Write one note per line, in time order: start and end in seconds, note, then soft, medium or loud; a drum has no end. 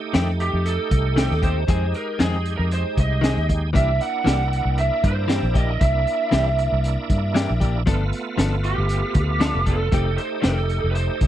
0.00 1.64 A3 medium
0.00 1.65 D#4 medium
0.00 1.65 G4 medium
0.14 0.51 F2 medium
0.14 0.30 D#3 medium
0.14 0.30 A3 medium
0.14 0.31 C4 medium
0.14 0.31 G4 medium
0.14 snare loud
0.14 closed hi-hat medium
0.40 0.67 G4 medium
0.40 closed hi-hat medium
0.54 0.77 F2 medium
0.66 1.44 A4 medium
0.66 closed hi-hat medium
0.91 1.28 C2 medium
0.91 kick medium
0.91 closed hi-hat medium
1.16 1.33 D#3 medium
1.16 1.33 A3 medium
1.16 1.34 C4 medium
1.16 1.34 G4 medium
1.16 snare loud
1.16 closed hi-hat medium
1.31 1.66 D#2 medium
1.31 snare soft
1.42 1.60 A3 soft
1.42 1.59 C4 soft
1.42 1.58 G4 soft
1.42 1.96 C5 medium
1.42 kick medium
1.42 closed hi-hat medium
1.67 1.92 F2 loud
1.67 1.84 D#3 medium
1.67 3.70 G#3 medium
1.67 1.85 G#3 medium
1.67 1.85 C4 medium
1.67 3.70 D#4 medium
1.67 3.71 G4 medium
1.67 1.85 G#4 medium
1.67 kick loud
1.67 closed hi-hat medium
1.94 2.21 A#4 medium
1.94 closed hi-hat medium
2.19 2.56 F2 medium
2.19 2.36 D#3 medium
2.19 2.36 G#3 medium
2.19 2.36 C4 medium
2.19 2.45 G#4 medium
2.19 2.37 G#4 medium
2.19 snare medium
2.19 closed hi-hat medium
2.45 closed hi-hat medium
2.57 2.83 F2 medium
2.57 2.62 A#4 medium
2.71 2.98 C5 medium
2.71 closed hi-hat medium
2.97 3.34 C2 medium
2.97 3.47 D#5 medium
2.97 kick medium
2.97 closed hi-hat medium
3.21 3.38 D#3 medium
3.21 3.39 G#3 medium
3.21 3.39 C4 medium
3.21 3.40 G#4 medium
3.21 snare loud
3.21 closed hi-hat medium
3.37 3.72 D#2 medium
3.49 kick medium
3.49 closed hi-hat medium
3.73 3.99 C2 loud
3.73 3.90 E3 medium
3.73 7.82 A#3 medium
3.73 3.90 A#3 medium
3.73 3.91 D4 medium
3.73 7.83 D4 medium
3.73 7.83 E4 medium
3.73 3.91 G4 medium
3.73 3.99 E5 loud
3.73 kick loud
3.73 closed hi-hat medium
4.01 4.74 F#5 loud
4.01 closed hi-hat medium
4.24 4.62 C2 medium
4.24 4.41 E3 medium
4.24 4.42 A#3 medium
4.24 4.42 D4 medium
4.24 4.43 G4 medium
4.24 snare loud
4.24 closed hi-hat medium
4.53 closed hi-hat medium
4.65 4.89 C2 medium
4.78 5.05 E5 medium
4.78 closed hi-hat medium
5.04 5.40 G2 medium
5.04 5.57 C5 medium
5.04 kick medium
5.04 closed hi-hat medium
5.28 5.45 E3 medium
5.28 5.45 A#3 medium
5.28 5.46 D4 medium
5.28 5.46 G4 medium
5.28 snare loud
5.28 closed hi-hat medium
5.43 5.78 A#1 medium
5.54 5.72 A#3 soft
5.54 5.72 D4 soft
5.54 5.71 G4 soft
5.54 5.81 D#5 medium
5.54 kick medium
5.54 closed hi-hat medium
5.81 6.05 C2 medium
5.81 7.57 E5 medium
5.81 kick loud
5.81 closed hi-hat medium
6.07 closed hi-hat medium
6.31 6.69 C2 medium
6.31 6.48 E3 medium
6.31 6.48 A#3 medium
6.31 6.49 D4 medium
6.31 6.49 G4 medium
6.31 snare loud
6.31 closed hi-hat medium
6.58 closed hi-hat medium
6.72 6.96 C2 medium
6.84 closed hi-hat medium
7.10 7.46 G2 medium
7.10 kick medium
7.10 closed hi-hat medium
7.35 7.51 E3 medium
7.35 7.51 A#3 medium
7.35 7.52 D4 medium
7.35 7.52 G4 medium
7.35 snare loud
7.35 closed hi-hat medium
7.50 7.85 A#1 medium
7.60 7.78 A#3 soft
7.60 7.78 D4 soft
7.60 7.77 G4 medium
7.60 kick medium
7.60 closed hi-hat medium
7.86 8.11 G1 medium
7.86 8.03 F3 medium
7.86 9.89 A3 medium
7.86 8.03 B3 medium
7.86 9.89 B3 medium
7.86 8.03 D4 medium
7.86 9.90 F4 medium
7.86 8.04 A4 medium
7.86 kick loud
7.86 closed hi-hat medium
8.13 closed hi-hat medium
8.38 8.75 G1 medium
8.38 8.54 F3 medium
8.38 8.54 B3 medium
8.38 8.55 D4 medium
8.38 8.55 A4 medium
8.38 snare medium
8.38 closed hi-hat medium
8.64 9.71 G4 medium
8.64 closed hi-hat medium
8.78 9.02 G1 medium
8.89 closed hi-hat medium
9.14 9.52 D2 medium
9.14 kick medium
9.14 closed hi-hat medium
9.40 9.57 F3 medium
9.40 9.57 B3 medium
9.40 9.58 D4 medium
9.40 9.58 A4 medium
9.40 snare medium
9.40 closed hi-hat medium
9.55 9.90 F1 medium
9.66 9.84 B3 soft
9.66 9.84 D4 soft
9.66 9.83 A4 soft
9.66 10.17 A4 medium
9.66 kick medium
9.66 closed hi-hat medium
9.92 10.16 F1 medium
9.92 10.08 D#3 medium
9.92 11.27 A3 medium
9.92 10.09 A3 medium
9.92 10.09 C4 medium
9.92 11.27 D#4 medium
9.92 11.27 G4 medium
9.92 10.10 G4 medium
9.92 kick loud
9.92 closed hi-hat medium
10.18 10.42 C5 medium
10.18 closed hi-hat medium
10.42 10.81 F1 medium
10.42 10.60 D#3 medium
10.42 10.60 A3 medium
10.42 10.61 C4 medium
10.42 10.61 G4 medium
10.42 10.85 A4 medium
10.42 snare loud
10.42 closed hi-hat medium
10.69 closed hi-hat medium
10.84 11.08 F1 medium
10.91 10.95 B4 medium
10.91 11.27 C5 medium
10.91 closed hi-hat medium
11.21 11.27 C2 medium
11.21 kick medium
11.21 closed hi-hat medium